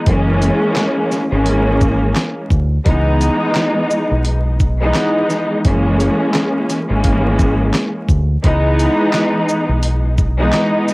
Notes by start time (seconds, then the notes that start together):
0.06 F#1 E3 G#3 A#3 C#4, kick, closed hi-hat
0.42 closed hi-hat, shaker
0.76 snare, clap, closed hi-hat
1.12 snare, shaker
1.30 G#1 E3 G#3 A#3 C#4
1.46 closed hi-hat
1.81 kick, shaker
2.16 snare, clap, closed hi-hat
2.50 D2, kick, shaker
2.84 C#2 E3 G#3 B3 D#4, kick, closed hi-hat
3.21 closed hi-hat, shaker
3.55 snare, clap, closed hi-hat
3.91 shaker
4.11 B1
4.25 closed hi-hat
4.60 kick, shaker
4.81 E3 G#3 B3 D#4
4.94 snare, clap, closed hi-hat
5.30 snare, shaker
5.65 F#1 E3 G#3 A#3 C#4, kick, closed hi-hat
6.00 closed hi-hat, shaker
6.34 snare, clap, closed hi-hat
6.70 snare, closed hi-hat, shaker
6.88 G#1 E3 G#3 A#3 C#4
7.04 kick, closed hi-hat
7.39 kick, shaker
7.74 snare, clap, closed hi-hat
8.08 D2, kick, shaker
8.43 C#2 E3 G#3 B3 D#4, kick, closed hi-hat
8.79 closed hi-hat, shaker
9.13 snare, clap, closed hi-hat
9.49 shaker
9.69 B1
9.83 closed hi-hat
10.18 kick, shaker
10.39 E3 G#3 B3 D#4
10.53 snare, clap, closed hi-hat
10.88 snare, shaker